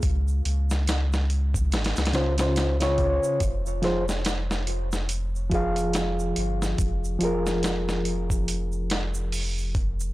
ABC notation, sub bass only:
X:1
M:4/4
L:1/16
Q:"Swing 16ths" 1/4=71
K:Fm
V:1 name="Sub bass" clef=bass
D,,2 D,,6 A,,, D,,6 z | F,,,12- F,,,2 G,,,2 | F,,,2 F,,,12- F,,,2 |]